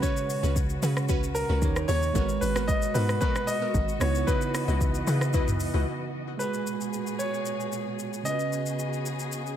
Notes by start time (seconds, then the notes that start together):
Already playing: B2 C#3 G#3 C#4 F#4 B4
0.02 C#4 F#4 B4 C#5, kick, shaker
0.17 shaker
0.30 open hi-hat, shaker
0.43 C#2 C#4 F#4 B4, shaker
0.56 kick, shaker
0.70 shaker
0.82 C#3 C#4 F#4 B4, open hi-hat, shaker
0.97 cross-stick, shaker
1.09 C#2 C#4 F#4 B4, kick, shaker
1.23 shaker
1.35 A#4, open hi-hat, shaker
1.49 C#2 C#4 F#4 B4
1.61 D#2 A#2 D#3 G3 D#4 G4 C#5, kick, shaker
1.76 cross-stick, shaker
1.88 D#2 D#4 G4 C#5, open hi-hat, shaker
2.02 shaker
2.13 G#1 B2 G#3 B3 F#4 A#4, kick, shaker
2.17 A#4 B4
2.29 shaker
2.41 G#1 B4, open hi-hat, shaker
2.55 B3 F#4 A#4, cross-stick, shaker
2.68 D#5, kick, shaker
2.82 shaker
2.94 G#2 B3 F#4 A#4 B4, open hi-hat, shaker
3.09 cross-stick, shaker
3.21 B3 F#4 A#4 B4, kick, shaker
3.36 cross-stick, shaker
3.47 D#5, open hi-hat, shaker
3.62 B3 F#4 A#4
3.74 G#1, kick, shaker
3.89 shaker
3.98 C#2 C#3 E3 B3 D#4 C#5 D#5, cross-stick, open hi-hat, shaker
4.03 E4 F#4
4.15 shaker
4.27 E4 F#4 B4 D#5, kick, shaker
4.41 shaker
4.55 cross-stick, open hi-hat, shaker
4.68 C#2 E4 F#4 B4 D#5, shaker
4.81 kick, shaker
4.94 shaker
5.07 C#3 E4 F#4 B4 D#5, open hi-hat, shaker
5.21 cross-stick, shaker
5.33 C#2 E4 F#4 B4 D#5, kick, shaker
5.48 mid tom, shaker
5.60 open hi-hat, shaker
5.74 C#2 E4 F#4 B4 D#5
6.37 A#2 B2 G#3 F#4 G#4 B4, shaker
6.42 G#4 B4
6.54 shaker
6.67 shaker
6.81 shaker
6.93 shaker
7.07 shaker
7.19 C#5, shaker
7.34 shaker
7.46 shaker
7.60 shaker
7.72 shaker
7.99 shaker
8.13 shaker
8.23 C#3 B3 C#4 F#4 G#4 D#5, shaker
8.28 F4 B4
8.34 F#4
8.39 shaker
8.52 shaker
8.66 shaker
8.79 shaker
8.93 shaker
9.06 shaker
9.19 shaker
9.32 shaker
9.46 shaker